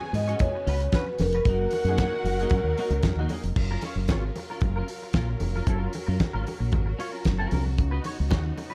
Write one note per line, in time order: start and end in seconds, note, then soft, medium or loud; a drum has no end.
0.00 1.43 C#3 medium
0.00 1.43 B3 medium
0.00 1.42 F#4 medium
0.00 1.15 G#4 medium
0.00 1.15 G#5 loud
0.00 muted clean electric guitar stroke soft
0.13 0.33 G#2 medium
0.13 0.42 D#5 loud
0.13 muted clean electric guitar stroke soft
0.13 open hi-hat medium
0.13 muted conga medium
0.28 0.39 C#4 medium
0.28 0.39 F#4 medium
0.28 0.38 C#5 medium
0.28 closed hi-hat soft
0.39 0.95 C#5 loud
0.39 muted clean electric guitar stroke soft
0.39 kick loud
0.39 closed hi-hat medium
0.39 low conga medium
0.55 muted clean electric guitar stroke medium
0.67 0.87 C#2 medium
0.67 0.81 C#4 medium
0.67 0.82 F#4 medium
0.67 0.80 B4 loud
0.67 open hi-hat medium
0.80 muted clean electric guitar stroke medium
0.80 closed hi-hat soft
0.92 1.07 C#4 loud
0.92 1.08 F#4 medium
0.92 1.21 B4 medium
0.92 1.07 B4 loud
0.92 kick loud
0.92 snare loud
0.92 closed hi-hat medium
0.92 high conga medium
1.08 muted clean electric guitar stroke medium
1.18 1.39 F1 loud
1.18 3.00 A#4 medium
1.18 muted clean electric guitar stroke soft
1.18 snare soft
1.18 open hi-hat medium
1.18 high conga medium
1.33 1.45 C#4 medium
1.33 1.44 F#4 medium
1.33 1.44 B4 medium
1.33 closed hi-hat medium
1.45 1.66 F#1 loud
1.45 3.54 F#3 medium
1.45 1.71 A#3 medium
1.45 3.54 D#4 medium
1.45 1.71 D#4 medium
1.45 3.27 F#4 loud
1.45 3.54 A#4 medium
1.45 3.27 F#5 loud
1.45 kick loud
1.45 closed hi-hat medium
1.45 muted conga soft
1.49 1.72 F#4 medium
1.71 open hi-hat medium
1.71 muted conga medium
1.75 muted clean electric guitar stroke soft
1.84 2.05 F#2 loud
1.84 1.97 G#4 medium
1.84 closed hi-hat soft
1.89 1.98 A#3 medium
1.89 1.98 D#4 medium
1.98 2.14 A#3 medium
1.98 kick loud
1.98 snare loud
1.98 closed hi-hat medium
1.98 high conga medium
2.02 2.15 D#4 medium
2.02 2.15 G#4 medium
2.16 muted clean electric guitar stroke soft
2.24 2.44 F#1 medium
2.24 muted clean electric guitar stroke soft
2.24 open hi-hat medium
2.24 muted conga medium
2.39 2.51 A#3 medium
2.39 2.50 D#4 medium
2.39 2.50 G#4 medium
2.39 closed hi-hat soft
2.50 2.61 F#2 loud
2.50 muted clean electric guitar stroke medium
2.50 kick loud
2.50 closed hi-hat medium
2.50 low conga medium
2.64 2.74 D#2 medium
2.64 muted clean electric guitar stroke medium
2.78 2.93 A#3 medium
2.78 2.93 D#4 medium
2.78 2.91 F#4 loud
2.78 open hi-hat medium
2.90 3.00 C#2 loud
2.90 muted clean electric guitar stroke soft
2.90 closed hi-hat soft
3.03 3.14 F#2 medium
3.03 muted clean electric guitar stroke soft
3.03 kick loud
3.03 snare loud
3.03 closed hi-hat medium
3.03 high conga medium
3.16 3.26 D#2 medium
3.16 3.31 D#4 medium
3.16 3.31 F#4 loud
3.21 3.30 A#3 medium
3.29 3.42 A#3 medium
3.29 3.43 D#4 medium
3.29 open hi-hat medium
3.29 high conga medium
3.33 3.43 G#4 medium
3.43 3.53 F1 medium
3.43 muted clean electric guitar stroke soft
3.43 closed hi-hat soft
3.55 3.76 F#1 medium
3.55 7.74 F#3 medium
3.55 5.64 F4 medium
3.55 7.74 A#4 medium
3.55 muted clean electric guitar stroke soft
3.55 kick loud
3.55 crash loud
3.55 muted conga soft
3.71 3.82 C#4 medium
3.71 3.83 F4 medium
3.71 3.84 A#4 medium
3.81 3.94 C#4 medium
3.81 3.95 F4 medium
3.81 3.95 C#5 medium
3.81 open hi-hat medium
3.81 muted conga medium
3.96 4.09 F#1 medium
3.96 muted clean electric guitar stroke soft
4.08 4.29 G#1 medium
4.08 4.24 C#4 medium
4.08 4.24 F4 medium
4.08 4.24 C#5 medium
4.08 kick loud
4.08 snare loud
4.08 closed hi-hat medium
4.08 high conga medium
4.24 muted clean electric guitar stroke soft
4.36 muted clean electric guitar stroke soft
4.36 open hi-hat medium
4.36 muted conga medium
4.50 4.61 C#4 soft
4.50 4.61 F4 medium
4.50 4.60 A#4 medium
4.61 4.81 F#1 medium
4.61 muted clean electric guitar stroke soft
4.61 kick loud
4.61 closed hi-hat medium
4.61 low conga medium
4.76 4.88 C#4 medium
4.76 4.88 F4 medium
4.76 4.89 A#4 medium
4.88 muted clean electric guitar stroke soft
4.88 open hi-hat medium
5.02 muted clean electric guitar stroke soft
5.13 5.34 A#1 medium
5.13 5.29 C#4 medium
5.13 5.29 F4 loud
5.13 5.28 A#4 medium
5.13 kick loud
5.13 snare loud
5.13 closed hi-hat medium
5.13 high conga medium
5.29 muted clean electric guitar stroke medium
5.40 5.60 F1 medium
5.40 muted clean electric guitar stroke soft
5.40 open hi-hat medium
5.40 high conga medium
5.55 5.66 C#4 soft
5.55 5.66 F4 medium
5.55 5.66 A#4 medium
5.55 high conga soft
5.66 5.87 F#1 loud
5.66 5.92 C#4 medium
5.66 5.92 F4 medium
5.66 8.74 F#4 medium
5.66 5.93 A#4 medium
5.66 kick loud
5.66 closed hi-hat medium
5.66 muted conga soft
5.93 muted clean electric guitar stroke soft
5.93 open hi-hat medium
5.93 muted conga medium
6.07 6.17 F#2 medium
6.07 6.18 C#4 medium
6.07 6.18 F4 soft
6.07 6.17 A#4 medium
6.19 muted clean electric guitar stroke soft
6.19 kick loud
6.19 snare loud
6.19 closed hi-hat medium
6.19 high conga medium
6.33 6.43 G#1 medium
6.33 6.45 C#4 medium
6.33 6.46 F4 medium
6.33 6.46 A#4 medium
6.46 muted clean electric guitar stroke soft
6.46 open hi-hat medium
6.46 muted conga medium
6.59 6.70 A#1 medium
6.59 muted clean electric guitar stroke soft
6.72 6.92 G#1 medium
6.72 muted clean electric guitar stroke medium
6.72 kick loud
6.72 closed hi-hat medium
6.72 low conga medium
6.86 muted clean electric guitar stroke medium
6.99 7.13 C#4 medium
6.99 7.12 F4 loud
6.99 7.12 C#5 loud
6.99 open hi-hat medium
7.12 7.24 C#4 soft
7.12 7.23 F4 soft
7.12 7.23 A#4 medium
7.25 7.45 F#1 medium
7.25 muted clean electric guitar stroke soft
7.25 kick loud
7.25 snare loud
7.25 closed hi-hat medium
7.25 high conga medium
7.38 7.50 C#4 medium
7.38 7.51 F4 medium
7.38 7.52 A#4 medium
7.51 7.78 C2 loud
7.51 7.63 C#4 medium
7.51 7.64 F4 medium
7.51 7.64 A#4 medium
7.51 open hi-hat medium
7.51 high conga medium
7.65 muted clean electric guitar stroke medium
7.65 high conga soft
7.77 7.98 C#2 medium
7.77 8.74 C#3 medium
7.77 8.74 B3 medium
7.77 8.74 D#4 medium
7.77 muted clean electric guitar stroke soft
7.77 kick loud
7.77 closed hi-hat medium
7.77 muted conga soft
7.91 8.03 D#4 medium
7.91 8.04 F#4 medium
7.91 8.05 B4 medium
8.04 8.16 D#4 medium
8.04 8.16 F#4 medium
8.04 8.17 C#5 medium
8.04 open hi-hat medium
8.04 muted conga medium
8.18 8.29 C#2 medium
8.18 muted clean electric guitar stroke soft
8.30 8.51 D#2 medium
8.30 8.45 D#4 medium
8.30 8.45 F#4 medium
8.30 8.44 C#5 medium
8.30 kick loud
8.30 snare loud
8.30 closed hi-hat medium
8.30 high conga medium
8.44 muted clean electric guitar stroke soft
8.57 muted clean electric guitar stroke soft
8.57 open hi-hat medium
8.57 muted conga medium
8.70 8.74 F#4 medium
8.70 8.74 B4 medium